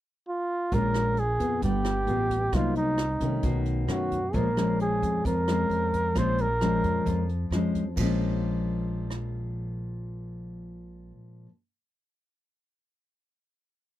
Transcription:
0.28 F4
0.72 A#1 A#2 G#3 C#4 F4 A#4, kick, closed hi-hat
0.94 cross-stick, closed hi-hat
1.17 G#4, closed hi-hat
1.40 F2 B3 F4, kick, closed hi-hat
1.62 G1 G3 G4, kick, closed hi-hat
1.85 cross-stick, closed hi-hat
2.07 A1 B3 F4 G#4, closed hi-hat
2.30 kick, closed hi-hat
2.53 C2 C3 F#3 A#3 D#4 F4, kick, cross-stick, closed hi-hat
2.75 D#4, closed hi-hat
2.98 cross-stick, closed hi-hat
3.20 C2 D#3 A3 C#4, kick, closed hi-hat
3.43 B1 B2, kick, closed hi-hat
3.65 closed hi-hat
3.88 F#2 D#3 A3 C#4 F#4, cross-stick, closed hi-hat
4.11 kick, closed hi-hat
4.33 A#1 A#2 F3 G#3 C#4 A#4, kick, closed hi-hat
4.56 F3 G#3 C#4, cross-stick, closed hi-hat
4.80 G#4, closed hi-hat
5.02 F2, kick, closed hi-hat
5.25 F2 A#4, kick, closed hi-hat
5.48 F3 G#3 C#4, cross-stick, closed hi-hat
5.70 F2, closed hi-hat
5.93 kick, closed hi-hat
6.15 A#1 A#2 F3 G#3 C#4 C5, kick, cross-stick, closed hi-hat
6.38 A#4, closed hi-hat
6.61 F3 G#3 C#4, cross-stick, closed hi-hat
6.84 F2, kick, closed hi-hat
7.06 F2, kick, closed hi-hat
7.29 closed hi-hat
7.51 F2 F3 G#3 C#4, cross-stick, closed hi-hat
7.75 kick, closed hi-hat
7.96 A#1 A#2 F3, kick, crash
8.00 G#3 C#4
9.10 cross-stick

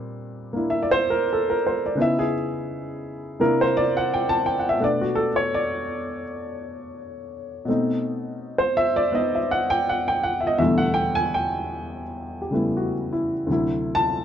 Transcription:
Already playing: A#2 G3 C4 D4
0.53 A#3 D4 E4
0.70 E5
0.82 D5
0.91 C5
1.10 A#4
1.33 A4
1.50 A#4
1.67 C5
1.86 D5
1.95 C#3 B3 D#4
2.00 E4 E5
2.19 G#4
3.40 C3 A#3 D4 E4 A#4
3.61 C5
3.77 D5
3.97 F#5
4.14 G5
4.29 A5
4.46 G5
4.59 F#5
4.69 E5
4.78 B2 A3 B3
4.82 D4 D5
5.01 F#4
5.15 A4
5.36 C#5
5.54 D5
7.65 B2 A3 C4
7.70 D#4
8.58 C5
8.77 E5
8.96 D5
9.12 B3 D#4 D#5
9.35 E5
9.51 F#5
9.70 G5
9.89 F#5
10.08 G5
10.23 F#5
10.40 E5
10.47 D#5
10.58 E2 B2 E3 G3 A3 E5
10.63 D3
10.78 F#5
10.94 G5
11.15 G#5
11.34 G5
12.42 G4
12.51 C#3 G3 A3 B3 E4
12.77 F#4
13.13 E4
13.47 D2 C3 F#3
13.52 E4
13.95 A5

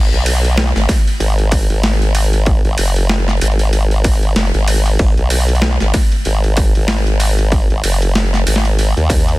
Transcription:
0.12 B1, open hi-hat
0.26 open hi-hat
0.45 open hi-hat
0.58 snare, open hi-hat
0.75 G#1, snare, open hi-hat
0.89 kick, snare, open hi-hat
1.07 open hi-hat
1.20 G#1, open hi-hat
1.38 open hi-hat
1.52 kick, open hi-hat
1.70 G#1, open hi-hat
1.83 snare, open hi-hat
2.02 open hi-hat
2.15 open hi-hat
2.33 open hi-hat
2.46 kick, open hi-hat
2.65 G#1, open hi-hat
2.78 F#1, open hi-hat
2.96 open hi-hat
3.09 snare, open hi-hat
3.28 snare, open hi-hat
3.31 open hi-hat
3.37 open hi-hat
3.41 G#1, open hi-hat
3.47 open hi-hat
3.52 open hi-hat
3.59 open hi-hat
3.73 open hi-hat
3.91 open hi-hat
4.04 kick, open hi-hat
4.23 open hi-hat
4.36 F#1, snare, open hi-hat
4.54 G#1, open hi-hat
4.68 open hi-hat
4.86 open hi-hat
4.99 G#1, kick, open hi-hat
5.17 B1, open hi-hat
5.30 open hi-hat
5.49 open hi-hat
5.55 open hi-hat
5.62 snare, open hi-hat
5.71 open hi-hat
5.80 G#1, snare, open hi-hat
5.94 kick, snare, open hi-hat
6.12 open hi-hat
6.25 G#1, open hi-hat
6.44 open hi-hat
6.57 kick, open hi-hat
6.75 G#1, open hi-hat
6.88 snare, open hi-hat
7.07 open hi-hat
7.20 open hi-hat
7.39 open hi-hat
7.52 kick, open hi-hat
7.70 G#1, open hi-hat
7.83 F#1, open hi-hat
8.02 open hi-hat
8.15 snare, open hi-hat
8.34 snare, open hi-hat
8.46 G#1, open hi-hat
8.56 snare
8.65 open hi-hat
8.79 open hi-hat
8.97 D#2, open hi-hat
9.10 kick, open hi-hat
9.29 open hi-hat

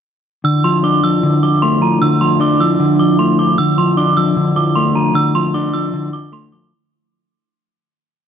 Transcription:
0.44 D3 F3 D4 E4 E6
0.64 F3 C6
0.84 D4 D6
1.04 F3 E6
1.23 D3
1.43 F3 D6
1.62 A3 C6
1.81 F3 A#5
2.02 D3 E6
2.21 F3 C6
2.40 D4 D6
2.60 F3 E6
2.80 D3
2.99 F3 D6
3.19 A3 C6
3.39 F3 D6
3.58 D3 E6
3.78 F3 C6
3.97 D4 D6
4.17 F3 E6
4.37 D3
4.56 F3 D6
4.75 A3 C6
4.95 F3 A#5
5.14 D3 E6
5.35 F3 C6
5.54 D4 D6
5.73 F3 E6
5.94 D3
6.13 F3 D6
6.32 A3 C6
6.52 F3 D6

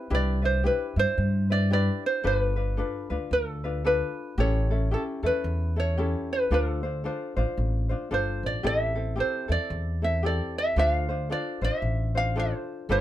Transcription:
Already playing: C4 E4 B4
0.10 C2 D4 E4 G4 B4
0.15 D5
0.42 D4 E4 B4 C5
0.64 D4 E4 G4 B4
0.96 G2 D4 E4 C5
1.18 G2
1.50 D4 E4 B4 D5
1.70 D4 E4 G4 B4 D5
2.06 C5
2.24 G1 D4 F4 A4 B4 C5
2.38 B4
2.56 D4 F4 B4
2.77 D4 F4 A4 B4
3.10 D2 D4 F4 B4
3.31 D2 A4
3.64 D4 F4 B4
3.85 D4 F4 A4 B4
4.38 A1 C#4 E4 G4 A4 C#5
4.71 C#4 E4 A4
4.91 C#4 E4 G4 A4
5.23 E2 C#4 E4 A4 B4
5.44 E2
5.76 C#4 E4 A4 C#5
5.97 C#4 E4 G4 A4
6.33 B4
6.51 D2 D4 F4 A4 C5
6.83 D4 F4 C5
7.04 D4 F4 A4 C5
7.36 A1 D4 F4 C5
7.57 A1
7.89 D4 F4 C5
8.11 G1 D4 F4 A4 C5
8.43 A1 D5
8.63 A1 C4 E4 G4 A4 E5
8.95 C4 E4 A4
9.16 C4 E4 G4 A4
9.20 C5
9.48 E2 C4 E4 A4 D5
9.70 E2
10.02 C4 E4 A4 E5
10.23 C4 E4 G4 A4 D5
10.58 E5
10.76 D2 D4 F4 A4 C5 E5
10.90 F5
11.09 D4 F4 C5
11.30 D4 F4 A4 C5 D5
11.61 A1 D4 F4 C5 E5
11.82 A1
12.15 D4 F4 C5 F5
12.36 D4 F4 A4 C5
12.89 G1 D4 F4 A4 B4 D5

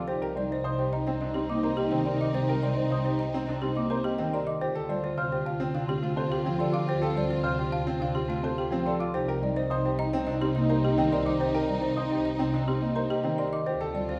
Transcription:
Already playing: F4 F5 D6
0.08 C2 C4 D#4 G4 C5
0.22 A#4 G5
0.36 G3 D#4 C5 D5
0.50 D#4 C5
0.64 C3 D#4 C5 D#5 D#6
0.79 G4 C5
0.93 D#4 D#5 A#5
1.07 C4 G5
1.21 C3 D4 D#5
1.25 D#4
1.34 C4 G4 C6
1.49 A#3 D#4 D#5 D6
1.54 D#4
1.63 C4 A#4 C5 A#5
1.77 G4 D#5
1.84 D#4
1.91 D#3 C4 G5
2.06 A#4 D5 C6
2.13 D#4
2.21 D#4 D#5 D6
2.34 G4 C5
2.42 D#4
2.49 A#4 G5
2.63 G3 C5 D5
2.71 D#4
2.77 D#4 C5
2.90 C3 C5 D#5 D#6
3.01 D#4 C5
3.05 G4
3.19 D#5 A#5
3.30 D#4 G5
3.34 C4
3.47 C3 D4 D#5
3.59 C4 D#4 G4 C6
3.75 A#3 D#4 D#5 D6
3.89 C4 D#4 A#4 C5 A#5
4.04 G4 D#5
4.18 D#3 C4 D#4 G5
4.33 A#4 D5 C6
4.47 D#4 D#5 D6
4.61 D2 C4 F4 G4 C5
4.75 A4 G5
4.89 G3 F4 C5 D5
5.03 F4 C5
5.18 C3 F4 C5 F5 F6
5.32 G4 C5
5.46 F4 F5 A5
5.60 C4 G5
5.74 C3 D4 F5
5.79 F4
5.88 C4 G4 C6
6.02 A3 F4 F5
6.08 F4
6.16 C4 A4 C5 A5
6.30 G4 F5
6.37 F4
6.44 F3 C4 G5
6.59 A4 D5 C6
6.67 F4
6.73 F4 F5 D6
6.88 G4 C5
6.96 F4
7.02 A4 G5
7.16 G3 C5 D5
7.25 F4
7.30 F4 C5
7.44 C3 C5 F5 F6
7.55 F4 G4 C5
7.72 F5 A5
7.83 C4 F4 G5
8.00 C3 D4 F5
8.13 C4 F4 G4 C6
8.29 A3 F4 F5
8.42 C4 F4 A4 C5 A5
8.57 G4 F5
8.71 F3 C4 F4 G5
8.86 A4 D5 C6
9.00 F4 F5 D6
9.14 C2 C4 D#4 G4 C5
9.28 A#4 G5
9.42 G3 D#4 D5
9.56 D#4 C5
9.70 C3 D#4 C5 D#5 D#6
9.85 G4 C5
9.99 D#4 D#5 A#5
10.13 C4 G5
10.27 C3 D4 D#5
10.31 D#4
10.41 C4 G4 C6
10.55 A#3 D#4 D#5
10.59 D#4
10.70 A#4 C5 A#5
10.84 G4 D#5
10.89 D#4
10.98 D#3 C4 G5
11.12 A#4 D5 C6
11.19 D#4
11.26 D#4 D#5 D6
11.40 G4 C5
11.48 D#4
11.54 A#4 G5
11.68 G3 D5
11.77 D#4
11.82 D#4 C5
11.97 C3 C5 D#6
12.06 D#4
12.11 G4 C5
12.25 D#5 A#5
12.36 C4 D#4 G5
12.53 C3 D4 D#5
12.64 C4 D#4 G4 C6
12.82 A#3 D#4 D#5
12.94 D#4 A#4 C5 A#5
13.10 G4 D#5
13.23 D#3 C4 D#4 G5
13.38 A#4 D5 C6
13.52 D#4 D#5 D6
13.66 D2 C4 F4 G4 C5
13.81 A4 G5
13.94 G3 F4 D5
14.09 F4 C5

